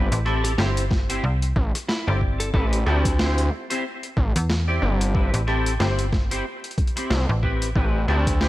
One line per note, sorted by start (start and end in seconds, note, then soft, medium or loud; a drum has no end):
0.00 0.18 C4 medium
0.00 0.18 E4 medium
0.00 0.18 G4 medium
0.00 0.18 B4 medium
0.12 0.56 A1 loud
0.12 closed hi-hat medium
0.25 0.51 C4 medium
0.25 0.51 E4 medium
0.25 0.51 G4 medium
0.25 0.51 A4 loud
0.25 cross-stick medium
0.44 0.53 G4 medium
0.44 closed hi-hat medium
0.58 1.21 G1 loud
0.58 0.83 C4 medium
0.58 0.83 E4 medium
0.58 0.70 G4 medium
0.58 0.83 G4 medium
0.58 0.83 C5 medium
0.58 snare loud
0.77 closed hi-hat medium
0.91 kick loud
0.91 snare medium
1.09 1.22 C4 medium
1.09 1.22 E4 medium
1.09 1.22 G4 medium
1.09 1.22 C5 loud
1.09 closed hi-hat medium
1.24 1.54 C2 medium
1.42 closed hi-hat soft
1.56 1.72 A1 loud
1.56 kick loud
1.75 cross-stick soft
1.75 closed hi-hat medium
1.88 2.11 E4 medium
1.88 snare loud
2.07 2.52 G1 loud
2.07 2.51 C4 medium
2.07 2.51 E4 medium
2.07 2.51 G4 medium
2.07 2.51 D5 medium
2.21 kick medium
2.40 2.49 A4 medium
2.40 closed hi-hat medium
2.54 2.84 A1 medium
2.54 2.79 C4 medium
2.54 2.79 E4 medium
2.54 2.79 G4 medium
2.54 2.66 A4 medium
2.54 2.79 B4 medium
2.54 kick loud
2.73 closed hi-hat medium
2.86 3.49 D2 loud
2.86 3.12 C4 medium
2.86 3.12 E4 medium
2.86 3.12 G4 medium
2.86 3.12 A4 medium
2.86 cross-stick medium
3.05 kick loud
3.05 closed hi-hat medium
3.19 3.44 C4 medium
3.19 3.44 E4 medium
3.19 3.44 G4 medium
3.19 3.44 C5 medium
3.19 snare loud
3.38 closed hi-hat medium
3.70 3.83 C4 medium
3.70 3.83 E4 medium
3.70 3.83 G4 medium
3.70 3.83 C5 loud
3.70 closed hi-hat medium
4.03 closed hi-hat soft
4.17 4.33 A1 loud
4.17 kick loud
4.36 4.80 E2 loud
4.36 closed hi-hat medium
4.50 snare loud
4.68 5.11 C4 medium
4.68 5.11 E4 medium
4.68 5.11 G4 medium
4.68 5.11 D5 loud
4.82 5.30 G1 loud
5.01 closed hi-hat medium
5.14 5.40 C4 medium
5.14 5.40 E4 medium
5.14 5.40 G4 medium
5.14 5.40 B4 medium
5.14 kick loud
5.34 5.78 A1 medium
5.34 closed hi-hat medium
5.47 5.72 C4 medium
5.47 5.72 E4 medium
5.47 5.72 G4 medium
5.47 5.72 A4 loud
5.47 cross-stick medium
5.66 closed hi-hat medium
5.79 6.43 G1 loud
5.79 6.05 C4 medium
5.79 6.05 E4 medium
5.79 6.05 G4 medium
5.79 6.05 C5 medium
5.79 snare loud
5.99 closed hi-hat medium
6.13 kick loud
6.13 snare medium
6.31 6.44 C4 medium
6.31 6.44 E4 medium
6.31 6.44 G4 medium
6.31 6.44 C5 loud
6.31 closed hi-hat medium
6.64 closed hi-hat soft
6.71 closed hi-hat soft
6.78 kick loud
6.78 closed hi-hat soft
6.87 closed hi-hat soft
6.96 7.19 C4 medium
6.96 7.19 E4 medium
6.96 7.19 G4 medium
6.96 7.19 C5 medium
6.96 cross-stick soft
6.96 closed hi-hat medium
7.10 7.26 C2 medium
7.10 snare loud
7.29 7.73 A1 loud
7.43 7.68 C4 medium
7.43 7.68 E4 medium
7.43 7.68 G4 medium
7.43 7.68 B4 medium
7.43 kick medium
7.62 closed hi-hat medium
7.75 8.06 A1 medium
7.75 8.01 C4 medium
7.75 8.01 E4 medium
7.75 8.01 G4 medium
7.75 8.01 B4 medium
7.75 kick loud
8.08 8.48 D2 loud
8.08 8.33 C4 medium
8.08 8.33 E4 medium
8.08 8.33 G4 medium
8.08 8.33 A4 loud
8.08 cross-stick soft
8.27 kick loud
8.27 closed hi-hat medium
8.40 8.48 C4 medium
8.40 8.48 E4 medium
8.40 8.48 G4 medium
8.40 8.48 C5 medium
8.40 snare loud